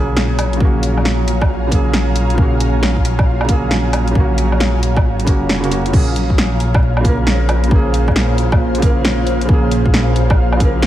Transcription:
0.00 0.59 A#1 medium
0.00 0.57 C#3 medium
0.00 5.93 F#3 medium
0.00 0.58 A#3 medium
0.00 0.61 A#3 medium
0.00 5.94 F4 medium
0.00 0.65 F#4 medium
0.00 0.60 G#4 loud
0.00 10.87 C#5 medium
0.00 5.93 F5 medium
0.00 7.40 G#5 medium
0.00 6.88 A#5 medium
0.17 snare loud
0.39 closed hi-hat soft
0.39 low woodblock medium
0.53 1.65 C#3 medium
0.53 closed hi-hat soft
0.61 1.26 A#1 loud
0.61 1.69 A#3 medium
0.61 kick loud
0.65 1.72 F#4 medium
0.83 closed hi-hat soft
0.97 low woodblock soft
1.05 snare loud
1.27 2.37 A#1 medium
1.27 closed hi-hat medium
1.41 kick medium
1.41 low woodblock medium
1.67 2.33 C#3 medium
1.67 2.36 A#3 medium
1.72 2.38 G#4 medium
1.72 kick medium
1.72 closed hi-hat medium
1.94 snare loud
2.16 closed hi-hat soft
2.30 3.43 C#3 medium
2.30 closed hi-hat soft
2.38 3.04 A#1 loud
2.38 3.47 A#3 medium
2.38 kick loud
2.42 3.49 F#4 medium
2.60 closed hi-hat medium
2.83 snare loud
2.97 kick medium
3.05 4.15 A#1 medium
3.05 closed hi-hat medium
3.19 kick loud
3.19 low woodblock medium
3.41 4.10 C#3 medium
3.41 low woodblock medium
3.49 4.14 A#3 medium
3.49 4.16 G#4 medium
3.49 kick medium
3.49 closed hi-hat medium
3.71 snare loud
3.93 closed hi-hat soft
3.93 low woodblock medium
4.08 5.23 C#3 medium
4.08 closed hi-hat soft
4.15 4.81 A#1 loud
4.15 5.25 A#3 medium
4.15 kick loud
4.20 5.27 F#4 medium
4.38 closed hi-hat medium
4.52 low woodblock soft
4.60 snare loud
4.82 5.06 A#1 medium
4.82 closed hi-hat medium
4.96 kick loud
4.96 low woodblock medium
5.05 5.39 G#1 medium
5.20 closed hi-hat soft
5.25 5.59 C#3 medium
5.25 5.60 A#3 medium
5.25 kick medium
5.25 closed hi-hat medium
5.29 5.61 F#4 medium
5.41 5.93 F1 medium
5.49 snare loud
5.60 5.67 C#3 medium
5.60 5.69 A#3 medium
5.60 closed hi-hat soft
5.65 5.87 C#3 medium
5.65 5.70 F#4 medium
5.70 5.91 A#3 medium
5.70 5.92 F#4 medium
5.70 closed hi-hat soft
5.86 6.99 C#3 medium
5.86 closed hi-hat soft
5.93 6.59 A#1 loud
5.93 7.02 A#3 medium
5.93 10.87 A#3 medium
5.93 10.87 F4 medium
5.93 10.87 F5 medium
5.93 kick loud
5.93 crash loud
5.97 7.04 G#4 medium
6.16 10.87 F4 medium
6.16 open hi-hat medium
6.30 kick medium
6.38 snare loud
6.50 10.87 C5 medium
6.60 7.70 A#1 medium
6.60 open hi-hat medium
6.74 kick loud
6.74 low woodblock medium
6.97 7.66 C#3 medium
6.97 low woodblock medium
7.05 7.70 A#3 medium
7.05 kick loud
7.05 open hi-hat medium
7.09 7.72 A#4 medium
7.27 snare loud
7.49 open hi-hat medium
7.49 low woodblock medium
7.64 8.77 C#3 medium
7.64 closed hi-hat soft
7.71 8.37 A#1 loud
7.71 8.80 A#3 medium
7.71 kick loud
7.76 8.83 G#4 medium
7.94 open hi-hat medium
8.08 kick medium
8.08 low woodblock soft
8.16 snare loud
8.38 9.48 A#1 medium
8.38 open hi-hat medium
8.52 kick loud
8.52 low woodblock medium
8.75 9.44 C#3 medium
8.75 closed hi-hat soft
8.82 9.47 A#3 medium
8.82 9.49 A#4 loud
8.82 kick loud
8.82 open hi-hat medium
9.05 snare loud
9.27 open hi-hat medium
9.41 10.55 C#3 medium
9.41 closed hi-hat soft
9.49 10.15 A#1 loud
9.49 10.58 A#3 medium
9.49 kick loud
9.53 10.61 G#4 medium
9.71 open hi-hat medium
9.86 kick medium
9.94 snare loud
10.16 10.87 A#1 medium
10.16 open hi-hat medium
10.30 kick loud
10.30 low woodblock medium
10.52 low woodblock medium
10.57 10.87 C#3 medium
10.57 kick loud
10.57 open hi-hat medium
10.61 10.87 A#3 medium
10.61 10.87 A#4 loud
10.82 snare loud

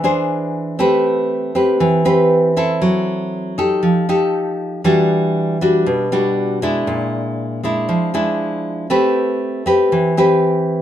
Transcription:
0.00 0.77 E3 medium
0.00 0.76 D4 medium
0.04 0.76 G#4 medium
0.04 0.76 C5 medium
0.79 1.78 A3 medium
0.79 1.51 C4 medium
0.79 1.52 G4 medium
0.79 1.52 B4 medium
1.55 2.02 C4 soft
1.55 2.02 G4 medium
1.55 2.02 B4 medium
1.80 2.80 E3 medium
2.05 2.52 C4 medium
2.05 2.53 G4 medium
2.05 2.53 B4 medium
2.57 3.54 C4 medium
2.57 3.54 E4 medium
2.57 3.54 A4 medium
2.82 3.81 F#3 medium
3.58 4.05 D#4 medium
3.58 4.05 G4 medium
3.58 4.05 A4 medium
3.83 4.82 F3 medium
4.09 4.81 D#4 medium
4.09 4.81 G4 medium
4.09 4.81 A4 medium
4.84 5.84 E3 medium
4.84 5.57 G3 medium
4.84 5.57 D4 medium
4.84 5.57 F#4 medium
5.61 6.08 G3 medium
5.61 6.08 D4 medium
5.61 6.08 F#4 medium
5.86 6.85 B2 medium
6.12 6.59 G3 medium
6.12 6.59 D4 medium
6.12 6.59 F#4 medium
6.62 7.60 G#3 medium
6.62 7.60 D4 medium
6.62 7.60 E4 medium
6.87 7.86 A#2 medium
7.64 8.10 G#3 soft
7.64 8.11 D4 medium
7.64 8.11 E4 medium
7.89 8.88 F3 medium
8.14 8.86 G#3 medium
8.14 8.86 D4 medium
8.14 8.86 E4 medium
8.90 9.89 A3 medium
8.90 9.62 C4 medium
8.90 9.62 G4 medium
8.90 9.63 B4 medium
9.66 10.13 C4 medium
9.66 10.13 G4 medium
9.66 10.13 B4 medium
9.92 10.82 E3 medium
10.17 10.82 C4 medium
10.17 10.82 G4 medium
10.17 10.82 B4 medium

